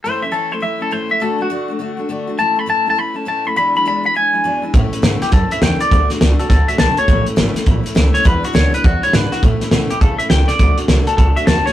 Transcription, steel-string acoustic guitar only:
X:1
M:4/4
L:1/8
Q:"Swing" 1/4=205
K:A
V:1 name="Steel-string acoustic guitar"
[A,,E,A,CE] [A,CE] [A,,E,A,CE] [A,CE] [E,A,CE] [A,CE] [A,,E,A,CE] [A,CE] | [D,A,DF] [A,DF] [D,A,DF] [A,DF] [D,A,DF] [A,DF] [D,A,DF] [A,DF] | [A,,E,A,CE] [A,CE] [A,,E,A,CE] [A,CE] [E,A,E] [A,CE] [A,,E,A,CE] [A,CE] | [E,,B,,E,G,DE] [E,G,DE] [E,,B,,E,G,DE] [E,G,DE] [E,G,DE] [E,G,DE] [E,,B,,E,G,DE] [E,G,DE] |
[A,,E,A,CE] [A,CE] [A,,E,A,CE] [A,CE] [E,A,CE] [A,CE] [A,,E,A,CE] [CE] | [D,A,DF] [A,DF] [D,A,DF] [A,DF] [D,A,DF] [A,DF] [D,A,DF] [A,DF] | [A,,E,A,CE] [A,CE] [A,,E,A,CE] [A,CE] [E,A,CE] [A,CE] [A,,E,A,CE] [A,CE] | [E,,B,,E,G,DE] [E,G,DE] [E,,B,,E,G,DE] [E,G,DE] [E,G,DE] [E,G,DE] [E,,B,,E,G,DE] [E,G,DE] |
[A,,E,A,CE] [A,CE] [A,,E,A,CE] [A,CE] [E,A,CE] [A,CE] [A,,E,A,CE] [A,CE] | [D,A,DF] [A,DF] [D,A,DF] [A,DF] [D,A,DF] [A,DF] [D,A,DF] [A,DF] |]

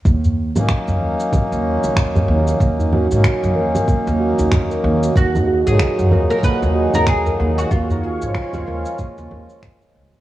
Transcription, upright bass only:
X:1
M:4/4
L:1/16
Q:"Swing 16ths" 1/4=94
K:Ebm
V:1 name="Upright bass" clef=bass
E,,3 A,, z G,, E,, z2 E,,2 E,,3 E,,2 | E,,3 A,, z G,, E,, z2 E,,2 E,,3 E,,2 | E,,3 A,, z G,, E,, z2 E,,2 E,,3 E,,2 | E,,3 A,, z E,, E,, z2 E,, E,, z3 D,, z |]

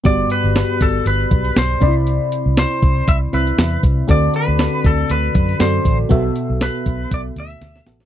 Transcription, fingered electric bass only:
X:1
M:4/4
L:1/16
Q:"Swing 16ths" 1/4=119
K:G
V:1 name="Fingered electric bass" clef=bass
G,,,2 z G,,,2 z G,,,2 G,,,2 B,,,2 B,,,2 C,,2- | C,,2 z C,,2 z C,,2 C,,2 C,,2 E,,2 C,,2 | D,,2 z D,,2 z D,,2 D,,2 F,,2 F,,2 A,,,2 | B,,,2 z B,,,2 z B,,,2 B,,,2 D,,2 D,,2 A,,,2 |]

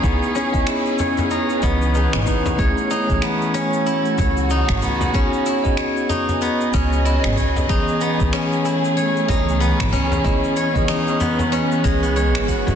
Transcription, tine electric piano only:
X:1
M:4/4
L:1/16
Q:"Swing 16ths" 1/4=94
K:C#m
V:1 name="Tine electric piano"
[B,DEG]3 [B,EGd]6- [B,EGd] [E,B,Bd]4 [B,DEB]2 | [A,CEG]3 [E,A,CG]12- [E,A,CG] | [B,DFG]3 [B,FGd]12- [B,FGd] | [E,B,CG]3 [E,B,CG]12- [E,B,CG] |
[B,EGd]3 [E,B,Gd]12- [E,B,Gd] |]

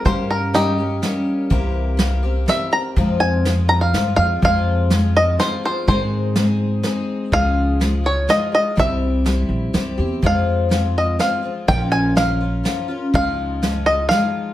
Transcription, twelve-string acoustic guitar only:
X:1
M:3/4
L:1/8
Q:1/4=124
K:Fm
V:1 name="Twelve-string acoustic guitar"
[G,B,DG]2 [G,B,DG] [B,DG] [G,B,DG]2 | [C,=E,B,CG]2 [E,B,CG] [B,CG] [E,B,CG] [B,CG] | [F,,C,F,A,CF]2 [F,A,CF] [F,A,CF] [F,A,CF] [F,A,CF] | [F,,C,F,A,CF]2 [F,A,CF] [F,A,CF] [F,A,CF] [F,A,CF] |
[A,,E,A,CEA]2 [A,CEA]2 [A,CEA]2 | [D,F,A,FA]2 [F,A,FA] [A,FA] [F,A,FA] [A,FA] | [C,G,C=EG]2 [G,CEG]2 [G,CEG] [CEG] | [F,,C,F,A,CF]2 [F,A,CF]2 [F,A,CF] [F,A,CF] |
[B,,F,B,DF]2 [F,B,DF] [B,DF] [F,B,DF] [B,DF] | [D,F,A,EF]2 [F,A,EF] [A,EF] [F,A,EF]2 |]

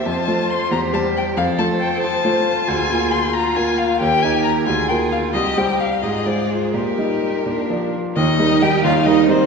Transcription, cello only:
X:1
M:6/8
L:1/16
Q:3/8=90
K:F
V:1 name="Cello"
F6 G6 | A6 F6- | [K:Eb] F6 F6 | G6 F6 |
G6 A6 | G8- G z3 | E4 G2 F2 E2 C2 |]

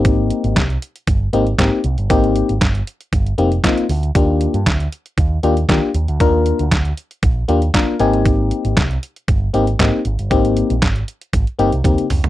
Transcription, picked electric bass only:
X:1
M:4/4
L:1/16
Q:1/4=117
K:Ablyd
V:1 name="Picked electric bass" clef=bass
A,,,3 A,,, C,,2 z2 G,,,2 A,,,2 A,, z C,, G,,, | A,,,3 A,,, G,,,2 z2 G,,,2 F,,,2 z2 D,,2 | E,,3 G,, D,,2 z2 E,,2 E,,2 E, z E,, D,, | E,,3 D,, D,,2 z2 B,,,2 E,,2 z2 A,,,2- |
A,,,3 A,,, C,,2 z2 G,,,2 A,,,2 A,, z A,,, G,,, | A,,,3 B,,, A,,,2 z2 A,,, z G,,, C,, E,, z _D,, =D,, |]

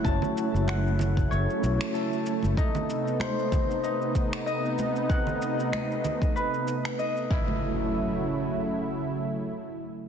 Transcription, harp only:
X:1
M:4/4
L:1/16
Q:"Swing 16ths" 1/4=95
K:F#m
V:1 name="Harp"
a2 z2 f2 z2 c z3 A2 z2 | ^D2 z2 =c2 z2 D z3 ^d2 z2 | f2 z2 ^d2 z2 B z3 d2 E2- | E2 z12 z2 |]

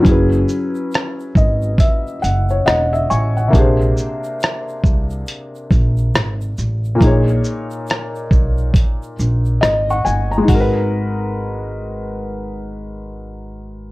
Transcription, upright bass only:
X:1
M:4/4
L:1/8
Q:"Swing 16ths" 1/4=69
K:D#phr
V:1 name="Upright bass" clef=bass
F,,, z2 G,,, z F,,, E,,, =A,,, | A,,, z2 ^B,,, z A,,, G,,, =A,,, | A,,, z2 B,,, z A,,, G,,, =G,,, | G,,,8 |]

